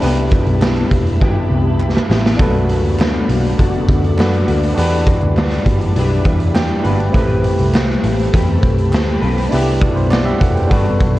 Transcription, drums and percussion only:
0.02 closed hi-hat medium
0.18 closed hi-hat soft
0.31 kick loud
0.31 closed hi-hat medium
0.46 closed hi-hat soft
0.62 snare loud
0.62 clap medium
0.76 closed hi-hat soft
0.91 kick medium
0.91 closed hi-hat medium
1.07 closed hi-hat medium
1.21 kick loud
1.80 clap medium
1.97 snare medium
2.11 snare loud
2.26 snare medium
2.39 kick loud
2.39 closed hi-hat medium
2.55 closed hi-hat soft
2.69 closed hi-hat medium
2.85 closed hi-hat soft
2.99 snare loud
2.99 clap medium
3.29 closed hi-hat medium
3.45 closed hi-hat medium
3.59 kick loud
3.59 closed hi-hat loud
3.74 closed hi-hat soft
3.88 kick loud
3.88 closed hi-hat medium
4.04 closed hi-hat medium
4.18 snare loud
4.18 clap medium
4.34 closed hi-hat soft
4.48 closed hi-hat medium
4.63 closed hi-hat medium
4.77 closed hi-hat medium
4.92 closed hi-hat soft
5.06 kick loud
5.06 closed hi-hat medium
5.21 closed hi-hat soft
5.37 snare loud
5.37 clap medium
5.51 snare soft
5.51 closed hi-hat soft
5.66 kick medium
5.66 closed hi-hat medium
5.81 closed hi-hat medium
5.96 closed hi-hat loud
6.25 kick loud
6.25 closed hi-hat medium
6.40 closed hi-hat soft
6.55 snare loud
6.55 clap medium
6.85 closed hi-hat medium
7.00 closed hi-hat medium
7.14 kick loud
7.14 closed hi-hat medium
7.30 closed hi-hat soft
7.44 closed hi-hat medium
7.59 closed hi-hat soft
7.74 snare loud
7.74 clap medium
7.90 snare soft
8.03 closed hi-hat medium
8.19 closed hi-hat soft
8.34 kick loud
8.34 closed hi-hat loud
8.48 closed hi-hat soft
8.62 kick medium
8.62 closed hi-hat medium
8.78 closed hi-hat medium
8.93 snare loud
8.93 clap medium
9.22 open hi-hat soft
9.38 closed hi-hat medium
9.52 closed hi-hat medium
9.67 closed hi-hat soft
9.81 kick loud
9.81 closed hi-hat medium
9.97 closed hi-hat soft
10.11 snare loud
10.11 clap medium
10.27 closed hi-hat soft
10.41 kick medium
10.41 closed hi-hat medium
10.57 closed hi-hat medium
10.71 kick loud
10.71 closed hi-hat loud
10.86 closed hi-hat soft
11.01 kick loud
11.01 closed hi-hat medium

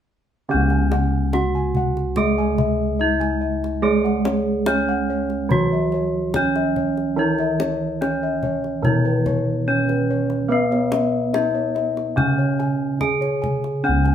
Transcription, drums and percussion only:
0.70 kendang slap soft
0.92 kendang high medium
1.33 kendang slap soft
1.33 kendang high soft
1.75 kendang low medium
1.97 kendang slap soft
2.16 kendang low medium
2.58 kendang slap soft
2.58 kendang low medium
3.21 kendang slap soft
3.64 kendang slap soft
4.06 kendang slap soft
4.25 kendang high medium
4.66 kendang slap soft
4.66 kendang high medium
5.30 kendang slap soft
5.51 kendang low medium
5.92 kendang slap soft
6.34 kendang high medium
6.34 kendang low soft
6.56 kendang slap soft
6.76 kendang low soft
6.97 kendang slap soft
7.39 kendang slap soft
7.60 kendang high soft
8.02 kendang slap soft
8.02 kendang high soft
8.43 kendang low soft
8.64 kendang slap soft
8.85 kendang low medium
9.26 kendang slap soft
9.26 kendang low medium
9.89 kendang slap soft
10.30 kendang slap soft
10.72 kendang slap soft
10.92 kendang high medium
11.34 kendang slap soft
11.34 kendang high medium
11.76 kendang slap soft
11.97 kendang slap soft
12.18 kendang slap soft
12.18 kendang low medium
12.60 kendang slap soft
13.01 kendang high soft
13.01 kendang low soft
13.22 kendang slap soft
13.44 kendang slap soft
13.44 kendang low medium
13.64 kendang slap soft
14.06 kendang slap soft

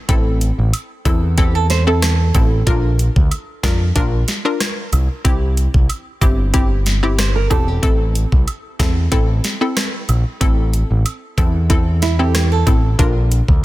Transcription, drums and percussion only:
0.09 kick loud
0.09 closed hi-hat medium
0.41 closed hi-hat medium
0.41 cabasa medium
0.73 closed hi-hat medium
0.73 high woodblock medium
1.05 kick loud
1.05 closed hi-hat medium
1.05 cabasa medium
1.05 high woodblock medium
1.38 kick loud
1.38 closed hi-hat medium
1.70 snare medium
1.70 closed hi-hat medium
1.70 cabasa medium
1.87 high woodblock medium
2.02 cross-stick loud
2.02 snare loud
2.02 closed hi-hat medium
2.35 kick loud
2.35 closed hi-hat medium
2.35 cabasa medium
2.35 high woodblock medium
2.67 kick loud
2.67 closed hi-hat medium
2.99 closed hi-hat medium
2.99 cabasa medium
3.16 kick loud
3.31 closed hi-hat medium
3.31 high woodblock medium
3.63 kick loud
3.63 snare loud
3.63 closed hi-hat medium
3.63 cabasa medium
3.63 high woodblock medium
3.96 kick loud
3.96 closed hi-hat medium
4.28 snare medium
4.28 closed hi-hat medium
4.28 cabasa medium
4.45 high woodblock medium
4.60 cross-stick loud
4.60 snare loud
4.60 closed hi-hat medium
4.93 closed hi-hat medium
4.93 cabasa loud
4.93 high woodblock medium
5.25 kick loud
5.25 closed hi-hat medium
5.57 closed hi-hat medium
5.57 cabasa medium
5.74 kick loud
5.89 closed hi-hat medium
5.89 high woodblock medium
6.22 kick loud
6.22 closed hi-hat medium
6.22 cabasa medium
6.22 high woodblock medium
6.54 kick loud
6.54 closed hi-hat medium
6.86 snare medium
6.86 closed hi-hat medium
6.86 cabasa medium
7.03 high woodblock medium
7.19 cross-stick loud
7.19 snare loud
7.19 closed hi-hat medium
7.51 kick loud
7.51 closed hi-hat medium
7.51 cabasa medium
7.51 high woodblock medium
7.83 kick loud
7.83 closed hi-hat medium
8.15 closed hi-hat medium
8.15 cabasa medium
8.32 kick loud
8.47 closed hi-hat medium
8.47 high woodblock medium
8.80 kick loud
8.80 snare loud
8.80 closed hi-hat medium
8.80 cabasa medium
8.80 high woodblock medium
9.12 kick loud
9.12 closed hi-hat medium
9.44 snare medium
9.44 closed hi-hat medium
9.44 cabasa medium
9.61 high woodblock medium
9.77 cross-stick loud
9.77 snare loud
9.77 closed hi-hat medium
10.09 closed hi-hat medium
10.09 cabasa medium
10.09 high woodblock medium
10.41 kick loud
10.41 closed hi-hat medium
10.73 closed hi-hat medium
10.73 cabasa medium
11.05 closed hi-hat medium
11.05 high woodblock medium
11.38 kick loud
11.38 closed hi-hat medium
11.38 cabasa medium
11.38 high woodblock medium
11.70 kick loud
11.70 closed hi-hat medium
12.02 snare medium
12.02 closed hi-hat medium
12.02 cabasa medium
12.19 high woodblock medium
12.35 cross-stick loud
12.35 snare loud
12.35 closed hi-hat medium
12.67 kick loud
12.67 closed hi-hat medium
12.67 cabasa medium
12.67 high woodblock medium
12.99 kick loud
12.99 closed hi-hat medium
13.31 closed hi-hat medium
13.31 cabasa medium
13.48 kick loud

